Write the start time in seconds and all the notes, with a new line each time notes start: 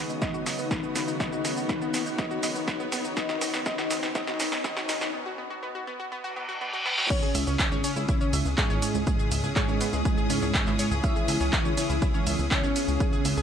Already playing: C#3 D#3 F#3 B3 D#4 F#4 G#4 D#5 D#6, riser
0.09 D#4, shaker
0.22 B3 D#5, kick, snare, shaker
0.34 F#4, shaker
0.46 D#5, snare, open hi-hat, shaker
0.59 B3, shaker
0.71 B4, kick, snare, shaker
0.83 B3, shaker
0.96 B3, snare, open hi-hat, shaker
1.08 D#4, shaker
1.20 D#3 B3 D#4 D#5, kick, snare, shaker
1.27 C#5
1.32 F#4, shaker
1.45 D#5, snare, open hi-hat, shaker
1.57 B3, shaker
1.69 B4, kick, snare, shaker
1.82 B3, shaker
1.94 B3, snare, open hi-hat, shaker
2.06 D#4, shaker
2.18 D#3 B3 D#5, kick, snare, shaker
2.31 F#4, shaker
2.43 D#5, snare, open hi-hat, shaker
2.55 B3, shaker
2.68 B4, kick, snare, shaker
2.80 B3, shaker
2.92 B3, snare, open hi-hat, shaker
3.04 D#4, shaker
3.17 D#3 B3 D#4 D#5, kick, snare, shaker
3.29 F#4, snare, shaker
3.41 D#5, snare, open hi-hat, shaker
3.54 B3, snare, shaker
3.66 D#3 B3 D#4 D#5, kick, snare, shaker
3.78 F#4, snare, shaker
3.91 D#5, snare, open hi-hat, shaker
4.03 B3, snare, shaker
4.15 D#3 B3 D#4 D#5, kick, snare, shaker
4.27 F#4, snare, shaker
4.40 D#5, snare, open hi-hat, shaker
4.52 B3, snare, shaker
4.64 D#3 B3 D#4 D#5, kick, snare, shaker
4.77 F#4, snare, shaker
4.89 D#5, snare, open hi-hat, shaker
5.01 B3, snare, shaker
5.14 B3
5.26 F#4
5.38 B3
5.50 F#4
5.63 B3
5.75 F#4
5.87 B3
6.00 F#4
6.12 B3, reverse cymbal
6.24 F#4
6.36 B3
6.49 F#4
6.61 B3
6.73 F#4
6.86 B3, snare
6.98 F#4, snare
7.10 C#3 G#3 B3 C#4 E4 C#5, kick, crash, ride, shaker
7.23 G#4 G#5, shaker
7.35 C#2 E5 D#6 E6, open hi-hat, ride, shaker
7.47 C#2 C#4 C#5, shaker
7.59 C#5 C#6, kick, clap, ride, shaker
7.72 G#1 C#4 C#5, shaker
7.84 C#4 C#5, open hi-hat, ride, shaker
7.96 C#2 E4 E5, shaker
8.09 E4 E5, kick, ride, shaker
8.21 C#4 C#5, shaker
8.33 C#2 E5 E6, open hi-hat, ride, shaker
8.45 C#2, shaker
8.58 G#2 G#3 G#4 C#5 C#6, kick, clap, ride, shaker
8.70 G#1 C#4 C#5, shaker
8.82 C#4 C#5, open hi-hat, ride, shaker
8.95 C#2, shaker
9.07 G#4 G#5, kick, ride, shaker
9.19 G#4 G#5, shaker
9.32 C#2 E5 E6, open hi-hat, ride, shaker
9.44 C#2 G#4 G#5, shaker
9.56 G#2 G#3 G#4 C#5 C#6, kick, clap, ride, shaker
9.68 G#1 C#4 C#5, shaker
9.81 B3 B4, open hi-hat, ride, shaker
9.93 C#2 G#3 G#4, shaker
10.05 G#4 G#5, kick, ride, shaker
10.18 G#4 G#5, shaker
10.30 C#2 C#4 C#5, open hi-hat, ride, shaker
10.42 C#2 C#4 C#5, shaker
10.54 C#5 C#6, kick, clap, ride, shaker
10.67 G#1 E4 E5, clap, shaker
10.79 C#5 C#6, open hi-hat, ride, shaker
10.91 C#2 G#4 G#5, shaker
11.04 E3 C#4 E4 C#5 E5, kick, ride, shaker
11.16 G#4 G#5, shaker
11.28 C#2 E5 E6, open hi-hat, ride, shaker
11.40 C#2 C#4 C#5, shaker
11.53 C#5 C#6, kick, clap, ride, shaker
11.65 G#1 C#4 C#5, shaker
11.77 C#4 C#5, open hi-hat, ride, shaker
11.90 C#2 E4 E5, shaker
12.02 E4 E5, kick, ride, shaker
12.14 C#4 C#5, shaker
12.27 C#2 E5 E6, open hi-hat, ride, shaker
12.39 C#2, shaker
12.51 C#3 C#4 C#5 C#6, kick, clap, ride, shaker
12.64 G#1 C#4 C#5, shaker
12.76 C#4 C#5, open hi-hat, ride, shaker
12.88 C#2, shaker
13.00 G#4 G#5, kick, ride, shaker
13.13 G#4 G#5, shaker
13.25 C#2 E5 E6, open hi-hat, ride, shaker
13.37 C#2 G#4 G#5, shaker